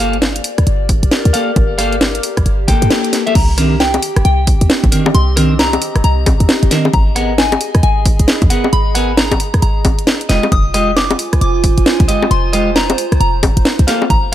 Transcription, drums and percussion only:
0.13 closed hi-hat
0.22 snare
0.36 closed hi-hat
0.44 open hi-hat
0.58 cross-stick, closed hi-hat
0.67 closed hi-hat
0.89 kick, open hi-hat
1.03 closed hi-hat
1.11 snare
1.25 closed hi-hat
1.34 open hi-hat
1.56 kick, closed hi-hat
1.79 cross-stick, open hi-hat
1.93 closed hi-hat
2.01 snare
2.15 closed hi-hat
2.23 open hi-hat
2.37 kick, cross-stick, closed hi-hat
2.46 closed hi-hat
2.68 kick, open hi-hat
2.82 closed hi-hat
2.91 snare
3.04 closed hi-hat
3.13 snare, open hi-hat
3.27 closed hi-hat
3.35 kick, closed hi-hat, crash
3.58 cross-stick, open hi-hat
3.80 snare
3.94 closed hi-hat, high bongo
4.03 open hi-hat
4.16 cross-stick, closed hi-hat
4.25 closed hi-hat
4.47 kick, open hi-hat
4.61 closed hi-hat
4.70 snare
4.84 kick, closed hi-hat
4.92 open hi-hat
5.06 high bongo
5.15 closed hi-hat
5.37 cross-stick, open hi-hat
5.59 snare
5.73 closed hi-hat, high bongo
5.82 open hi-hat
5.96 cross-stick, closed hi-hat
6.04 closed hi-hat
6.26 kick, open hi-hat, high bongo
6.40 closed hi-hat
6.49 snare
6.63 closed hi-hat
6.71 snare, open hi-hat
6.85 high bongo
6.93 kick, closed hi-hat
7.16 cross-stick, open hi-hat
7.38 snare
7.52 closed hi-hat, high bongo
7.61 open hi-hat
7.75 cross-stick, closed hi-hat
7.83 closed hi-hat
8.06 kick, open hi-hat
8.19 closed hi-hat
8.28 snare
8.42 kick, closed hi-hat
8.50 open hi-hat
8.64 high bongo
8.73 closed hi-hat
8.95 cross-stick, open hi-hat
9.17 snare
9.31 kick, closed hi-hat, high bongo
9.40 open hi-hat
9.54 cross-stick, closed hi-hat
9.62 closed hi-hat
9.85 kick, open hi-hat, high bongo
9.99 closed hi-hat
10.07 snare
10.21 closed hi-hat
10.29 snare, open hi-hat
10.43 closed hi-hat, high bongo
10.52 kick, closed hi-hat
10.74 cross-stick, open hi-hat
10.97 snare
11.11 closed hi-hat, high bongo
11.19 open hi-hat
11.33 cross-stick, closed hi-hat
11.41 closed hi-hat
11.64 kick, open hi-hat
11.78 closed hi-hat
11.86 snare
12.00 kick, closed hi-hat
12.09 open hi-hat
12.22 high bongo
12.31 closed hi-hat
12.53 cross-stick, open hi-hat
12.76 snare
12.90 closed hi-hat, high bongo
12.98 open hi-hat
13.12 cross-stick, closed hi-hat
13.21 closed hi-hat
13.43 kick, open hi-hat, high bongo
13.57 closed hi-hat
13.65 snare
13.79 closed hi-hat
13.88 snare, open hi-hat
14.02 high bongo
14.10 kick, closed hi-hat

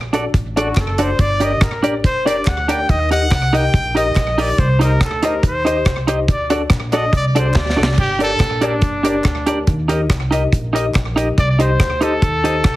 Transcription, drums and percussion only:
0.14 closed hi-hat
0.34 kick, closed hi-hat
0.57 closed hi-hat
0.75 kick, cross-stick, clap, closed hi-hat
0.98 closed hi-hat
1.19 kick, closed hi-hat
1.40 closed hi-hat
1.61 kick, cross-stick, clap, closed hi-hat
1.84 closed hi-hat
2.04 kick, closed hi-hat
2.27 closed hi-hat
2.45 kick, cross-stick, clap, closed hi-hat
2.69 closed hi-hat
2.89 kick, closed hi-hat
3.12 closed hi-hat
3.31 kick, cross-stick, clap, closed hi-hat
3.54 closed hi-hat
3.74 kick, closed hi-hat
3.97 closed hi-hat
4.16 kick, cross-stick, clap, closed hi-hat
4.39 open hi-hat
4.58 kick, closed hi-hat
4.81 closed hi-hat
5.01 kick, cross-stick, clap, closed hi-hat
5.23 closed hi-hat
5.43 kick, closed hi-hat
5.67 closed hi-hat
5.86 kick, cross-stick, clap, closed hi-hat
6.08 closed hi-hat
6.28 kick, closed hi-hat
6.50 closed hi-hat
6.70 kick, cross-stick, clap, closed hi-hat
6.92 closed hi-hat
7.13 kick, closed hi-hat
7.36 closed hi-hat
7.54 kick, snare, clap
7.70 snare
7.83 snare
7.98 kick, crash
8.20 closed hi-hat
8.40 kick, cross-stick, clap, closed hi-hat
8.62 closed hi-hat
8.82 kick, closed hi-hat
9.05 closed hi-hat
9.24 kick, cross-stick, clap, closed hi-hat
9.47 closed hi-hat
9.67 kick, closed hi-hat
9.89 closed hi-hat
10.10 kick, cross-stick, clap, closed hi-hat
10.32 closed hi-hat
10.53 kick, closed hi-hat
10.76 closed hi-hat
10.95 kick, cross-stick, clap, closed hi-hat
11.18 closed hi-hat
11.38 kick, closed hi-hat
11.60 closed hi-hat
11.80 kick, cross-stick, clap, closed hi-hat
12.02 closed hi-hat
12.22 kick, closed hi-hat
12.45 closed hi-hat
12.64 kick, cross-stick, clap, closed hi-hat

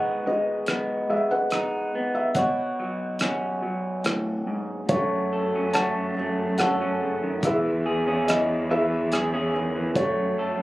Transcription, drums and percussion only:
0.66 cross-stick, closed hi-hat
1.50 cross-stick, closed hi-hat
2.35 kick, closed hi-hat
3.19 cross-stick, closed hi-hat
4.04 cross-stick, closed hi-hat
4.89 kick, closed hi-hat
5.74 cross-stick, closed hi-hat
6.58 cross-stick, closed hi-hat
7.43 kick, closed hi-hat
8.28 cross-stick, closed hi-hat
9.12 cross-stick, closed hi-hat
9.96 kick, closed hi-hat

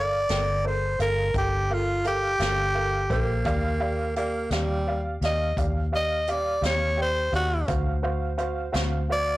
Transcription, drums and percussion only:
0.29 snare, closed hi-hat
1.00 closed hi-hat
1.34 kick, closed hi-hat
2.05 closed hi-hat
2.40 snare, closed hi-hat
3.10 kick, closed hi-hat
3.45 kick, closed hi-hat
4.16 closed hi-hat
4.51 snare, closed hi-hat
5.22 snare, closed hi-hat
5.57 kick, closed hi-hat
6.27 closed hi-hat
6.63 snare, closed hi-hat
7.33 closed hi-hat
7.68 kick, closed hi-hat
8.38 closed hi-hat
8.74 snare, closed hi-hat

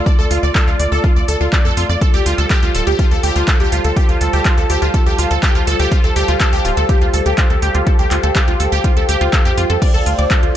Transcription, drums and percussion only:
0.06 kick
0.31 open hi-hat
0.55 kick, clap
0.80 open hi-hat
1.04 kick
1.28 open hi-hat
1.53 kick, clap
1.77 open hi-hat
2.01 kick, closed hi-hat
2.14 closed hi-hat
2.26 open hi-hat
2.38 closed hi-hat
2.50 kick, clap, closed hi-hat
2.63 closed hi-hat
2.75 open hi-hat
2.87 closed hi-hat
2.99 kick, closed hi-hat
3.11 closed hi-hat
3.23 open hi-hat
3.36 closed hi-hat
3.48 kick, clap, closed hi-hat
3.60 closed hi-hat
3.72 open hi-hat
3.85 closed hi-hat
3.97 kick, closed hi-hat
4.09 closed hi-hat
4.21 open hi-hat
4.33 closed hi-hat
4.45 kick, clap, closed hi-hat
4.58 closed hi-hat
4.70 open hi-hat
4.82 closed hi-hat
4.94 kick, closed hi-hat
5.06 closed hi-hat
5.19 open hi-hat
5.31 closed hi-hat
5.43 kick, clap, closed hi-hat
5.55 closed hi-hat
5.67 open hi-hat
5.80 closed hi-hat
5.92 kick, closed hi-hat
6.04 closed hi-hat
6.16 open hi-hat
6.28 closed hi-hat
6.40 kick, clap, closed hi-hat
6.53 closed hi-hat
6.65 open hi-hat
6.77 closed hi-hat
6.89 kick, closed hi-hat
7.01 closed hi-hat
7.14 open hi-hat
7.26 closed hi-hat
7.38 kick, clap, closed hi-hat
7.50 closed hi-hat
7.62 open hi-hat
7.75 closed hi-hat
7.87 kick, closed hi-hat
7.99 closed hi-hat
8.11 clap, open hi-hat
8.23 closed hi-hat
8.36 kick, clap, closed hi-hat
8.48 closed hi-hat
8.60 open hi-hat
8.72 closed hi-hat
8.84 kick, closed hi-hat
8.97 closed hi-hat
9.09 open hi-hat
9.21 closed hi-hat
9.33 kick, clap, closed hi-hat
9.45 closed hi-hat
9.58 open hi-hat
9.70 closed hi-hat
9.82 kick, closed hi-hat, crash
9.94 closed hi-hat
10.06 open hi-hat
10.19 closed hi-hat
10.31 kick, clap, closed hi-hat
10.43 closed hi-hat

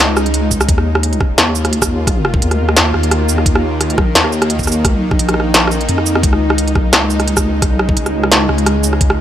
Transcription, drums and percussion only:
0.17 cross-stick, shaker
0.26 closed hi-hat
0.34 closed hi-hat
0.51 kick, shaker
0.61 cross-stick, shaker
0.69 kick, closed hi-hat
0.78 cross-stick
0.95 cross-stick
1.03 closed hi-hat
1.13 closed hi-hat
1.21 kick, cross-stick
1.38 cross-stick, snare, closed hi-hat
1.55 shaker
1.65 cross-stick, closed hi-hat
1.73 closed hi-hat
1.82 kick, cross-stick, shaker
2.07 kick, cross-stick, closed hi-hat
2.25 cross-stick
2.34 kick
2.42 closed hi-hat
2.51 cross-stick, closed hi-hat
2.69 cross-stick
2.77 snare, closed hi-hat
2.94 cross-stick
3.03 closed hi-hat
3.11 cross-stick, closed hi-hat
3.29 shaker
3.38 cross-stick
3.46 kick, closed hi-hat
3.55 cross-stick
3.81 cross-stick, closed hi-hat
3.90 closed hi-hat
3.98 kick, cross-stick
4.15 snare, closed hi-hat
4.24 cross-stick
4.32 shaker
4.42 cross-stick, closed hi-hat
4.50 closed hi-hat
4.59 kick, shaker
4.63 shaker
4.67 cross-stick, shaker
4.72 shaker
4.85 kick, cross-stick, closed hi-hat
5.11 kick, cross-stick
5.19 closed hi-hat
5.29 cross-stick, closed hi-hat
5.34 cross-stick
5.40 cross-stick
5.54 cross-stick, snare, closed hi-hat
5.67 cross-stick, shaker
5.81 closed hi-hat
5.89 closed hi-hat
5.98 cross-stick
6.06 shaker
6.15 cross-stick
6.23 kick, closed hi-hat
6.33 cross-stick
6.50 cross-stick
6.58 closed hi-hat
6.68 closed hi-hat
6.75 kick, cross-stick
6.93 cross-stick, snare, closed hi-hat
7.10 shaker
7.20 cross-stick, closed hi-hat
7.28 closed hi-hat
7.37 kick, cross-stick, shaker
7.62 kick, cross-stick, closed hi-hat
7.79 cross-stick
7.89 kick
7.97 closed hi-hat
8.06 cross-stick, closed hi-hat
8.24 cross-stick
8.32 snare, closed hi-hat
8.49 cross-stick
8.58 closed hi-hat
8.66 cross-stick, closed hi-hat
8.84 shaker
8.93 cross-stick
9.01 kick, closed hi-hat
9.10 cross-stick

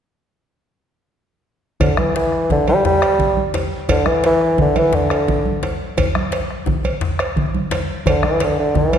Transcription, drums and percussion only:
1.80 bombo low, cowbell, djembe bass, low conga
1.97 bombo rim, high conga
2.16 djembe slap
2.32 bombo rim
2.50 bombo low, djembe tone, low conga
2.67 cowbell, djembe slap, high conga
2.85 djembe slap, djembe bass
3.02 bombo rim, cowbell
3.19 bombo low, low conga
3.37 high conga
3.54 cowbell, djembe slap, djembe tone
3.89 bombo low, cowbell, low conga, djembe bass
4.06 bombo rim, high conga
4.24 cowbell, djembe slap
4.41 bombo rim
4.58 bombo low, djembe tone, low conga
4.75 cowbell, djembe slap, high conga
4.93 djembe slap, djembe bass
5.10 bombo rim, cowbell
5.28 bombo low, low conga
5.45 high conga
5.63 cowbell, djembe slap, djembe tone
5.97 bombo low, cowbell, djembe bass, low conga
6.15 bombo rim, high conga
6.32 cowbell, djembe slap
6.50 bombo rim
6.66 bombo low, djembe tone, low conga
6.83 cowbell, djembe slap, high conga
7.01 djembe slap, djembe bass
7.19 bombo rim, cowbell
7.36 bombo low, low conga
7.54 high conga
7.71 cowbell, djembe slap, djembe tone
8.06 bombo low, cowbell, djembe slap, djembe bass, low conga
8.23 bombo rim, high conga
8.40 cowbell, djembe slap
8.58 djembe slap
8.75 bombo rim, bombo low, djembe tone, low conga
8.92 cowbell, high conga

